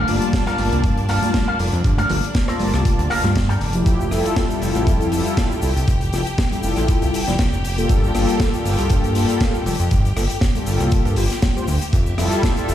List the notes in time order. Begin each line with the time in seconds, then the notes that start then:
Already playing: D4 A4 A#4 D5 F5
0.08 G1 G3 A#3 F4 A5, open hi-hat, maracas
0.21 closed hi-hat, maracas
0.33 muted clean electric guitar stroke, kick, snare, closed hi-hat, maracas
0.46 G3 A#3 F4 A4 A#4 F5 A5, cross-stick, closed hi-hat
0.58 G1, open hi-hat, high conga, maracas
0.72 C2, closed hi-hat, maracas
0.84 G2, kick, closed hi-hat, maracas
0.97 closed hi-hat
1.08 G3 A#3 F4 A4 A#4 F5 A5, cross-stick, open hi-hat, maracas
1.23 closed hi-hat, high conga, maracas
1.34 kick, snare, closed hi-hat, maracas
1.47 A4 A#4 F5
1.59 F1 G3 A#3 F4 A4, open hi-hat, maracas
1.72 F2, closed hi-hat, maracas
1.84 G1, kick, closed hi-hat, maracas
1.98 A4 A#4 F5, closed hi-hat, high conga, maracas
2.09 G1 G3 A#3 F4 A4, open hi-hat, low conga, maracas
2.23 closed hi-hat, maracas
2.34 muted clean electric guitar stroke, kick, snare, closed hi-hat, maracas
2.48 G3 A#3 F4 A4 A#4 C5 A5, cross-stick, closed hi-hat, maracas
2.59 G1, open hi-hat, high conga, maracas
2.73 C2, cross-stick, closed hi-hat, maracas
2.85 kick, closed hi-hat, maracas
2.99 D2, closed hi-hat, maracas
3.10 A4 A#4 F5, cross-stick, open hi-hat, maracas
3.24 G2 G3 A#3 F4 C5, snare, closed hi-hat, high conga, maracas
3.35 kick, snare, closed hi-hat, maracas
3.49 A4 A#4 G5, closed hi-hat, maracas
3.60 F1, open hi-hat, maracas
3.73 F3 A3 E4 G4, closed hi-hat, maracas
3.86 F1 G4 G5, kick, closed hi-hat, shaker
4.00 shaker
4.11 F1 G3 E4 F4 A4, cross-stick, open hi-hat, shaker
4.26 closed hi-hat, shaker
4.36 kick, snare, closed hi-hat, shaker
4.49 G3 E4 F4 A4, closed hi-hat, shaker
4.62 F1, open hi-hat, shaker
4.75 A1, cross-stick, closed hi-hat, shaker
4.87 F2, kick, closed hi-hat, shaker
5.01 closed hi-hat, shaker
5.12 G3 E4 F4 A4, open hi-hat, shaker
5.26 closed hi-hat, shaker
5.37 kick, snare, closed hi-hat, shaker
5.51 shaker
5.62 C2 G3 E4 F4 A4, open hi-hat, shaker
5.76 C2, closed hi-hat, shaker
5.88 F1, kick, closed hi-hat, shaker
6.01 closed hi-hat, shaker
6.12 F1 G3 E4 F4 A4, cross-stick, open hi-hat, shaker
6.26 closed hi-hat, shaker
6.38 kick, snare, closed hi-hat, shaker
6.51 G3 E4 F4 A4, closed hi-hat, shaker
6.63 F1, open hi-hat, shaker
6.76 A1, cross-stick, closed hi-hat, shaker
6.88 kick, closed hi-hat, shaker
7.02 C2, closed hi-hat, shaker
7.14 open hi-hat, shaker
7.27 F1 G3 E4 F4 D5, snare, closed hi-hat, shaker
7.39 kick, snare, closed hi-hat, shaker
7.53 F1, shaker
7.65 open hi-hat, shaker
7.77 G3 A#3 F4 A4, closed hi-hat, shaker
7.89 G1, kick, closed hi-hat, shaker
8.04 shaker
8.14 G1 G3 A#3 F4 A4, cross-stick, open hi-hat, shaker
8.29 closed hi-hat, shaker
8.40 kick, snare, closed hi-hat, shaker
8.53 G3 A#3 F4 A4, closed hi-hat, shaker
8.65 G1, open hi-hat, shaker
8.79 C2, cross-stick, closed hi-hat, shaker
8.90 G2, kick, closed hi-hat, shaker
9.04 closed hi-hat, shaker
9.15 G3 A#3 F4 A4, open hi-hat, shaker
9.29 closed hi-hat, shaker
9.40 kick, snare, closed hi-hat, shaker
9.54 shaker
9.65 F1 G3 A#3 F4 A4, open hi-hat, shaker
9.79 F2, closed hi-hat, shaker
9.91 G1, kick, closed hi-hat, shaker
10.05 closed hi-hat, shaker
10.16 G1 G3 A#3 F4 A4, cross-stick, open hi-hat, shaker
10.30 closed hi-hat, shaker
10.41 kick, snare, closed hi-hat, shaker
10.54 G3 A#3 F4 A4, closed hi-hat, shaker
10.66 G1, open hi-hat, shaker
10.80 C2, cross-stick, closed hi-hat, shaker
10.91 kick, closed hi-hat, shaker
11.05 G2, closed hi-hat, shaker
11.16 G1 G3 A#3 F4 G4, open hi-hat, shaker
11.30 snare, closed hi-hat, shaker
11.42 kick, snare, closed hi-hat, shaker
11.55 G3 A#3 F4 C5, shaker
11.68 D2, open hi-hat, shaker
11.81 closed hi-hat, shaker
11.92 F1 G4 E5, kick, closed hi-hat, shaker
12.06 shaker
12.18 F1 G3 E4 F4 A4, cross-stick, open hi-hat, shaker
12.31 closed hi-hat, shaker
12.43 kick, snare, closed hi-hat, shaker
12.56 G3 E4 F4 A4, closed hi-hat, shaker
12.69 F1, open hi-hat, shaker